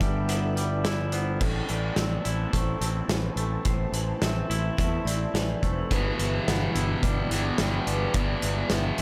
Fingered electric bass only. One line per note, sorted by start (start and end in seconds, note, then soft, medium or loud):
0.00 1.37 G1 medium
1.41 1.60 A1 medium
1.70 1.89 A1 medium
1.97 2.16 A1 medium
2.25 2.45 A1 medium
2.53 2.72 A1 medium
2.81 3.00 A1 medium
3.08 3.28 A1 medium
3.36 3.56 A1 medium
3.65 3.85 A1 medium
3.92 4.12 A1 medium
4.22 4.41 A1 medium
4.50 4.69 A1 medium
4.78 4.98 E2 medium
5.05 5.25 A1 medium
5.34 5.53 A1 medium
5.63 5.82 F1 medium
5.91 6.10 G1 medium
6.19 6.38 G1 medium
6.48 6.66 G1 medium
6.75 6.94 G1 medium
7.03 7.22 G1 medium
7.30 7.49 G1 medium
7.60 7.78 G1 medium
7.87 8.06 G1 medium
8.14 8.34 G1 medium
8.43 8.62 G1 medium
8.70 8.90 G1 medium
8.98 9.02 G1 medium